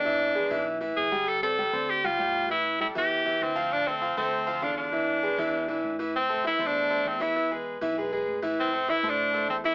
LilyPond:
<<
  \new Staff \with { instrumentName = "Grand piano" } { \time 4/4 \key a \minor \tempo 4 = 197 <e e' e''>4 <gis gis' b'>8 <e e' e''>4 <e e' e''>4 <g g' g''>8~ | <g g' g''>8 <c' c'' d''>8 <g g' g''>8 <c' c'' d''>4 <g g' g''>8 <g g' g''>4 | <e e' e''>4 <g g' a'>8 <e e' e''>4 <e e' e''>4 <f f' f''>8~ | <f f' f''>8 <a a' c''>8 <f f' f''>8 <a a' c''>4 <f f' f''>8 <d f' f''>4 |
<e e' e''>4 <gis gis' b'>8 <e e' e''>4 <e e' e''>4 <e e' e''>8 | r8 <a a' c''>8 <e e' e''>8 <a a' c''>4 <a a' c''>4 <e e' e''>8 | <e e' e''>8 <gis gis' b'>4 <e e' e''>8 <gis gis' b'>8 <gis gis' b'>4 <e e' e''>8~ | <e e' e''>8 <a a' c''>8 <e e' e''>8 <a a' c''>4 <a a' c''>4 <e e' e''>8 | }
  \new Staff \with { instrumentName = "Tenor saxophone" } { \time 4/4 \key a \minor d'2 r4 gis'4 | a'8 a'4. g'8 f'4. | e'4 e'8 g'4. c'4 | d'8 c'4 c'4. d'8 d'8~ |
d'2.~ d'8 r8 | c'4 \tuplet 3/2 { e'4 d'8~ } d'4 c'8 e'8~ | e'8 r2. r8 | c'4 \tuplet 3/2 { e'4 d'8~ } d'4 c'8 e'8 | }
  \new Staff \with { instrumentName = "Fretless electric bass" } { \clef bass \time 4/4 \key a \minor e,4. b,,4 a,,8 g,,4~ | g,,4. d,4. a,,4~ | a,,4. e,4 e,8 d,4~ | d,4. d,4. e,4~ |
e,4. e,4 b,,8 a,,4~ | a,,4. e,4. e,4~ | e,4. b,,4. a,,4~ | a,,4. a,4. e,4 | }
>>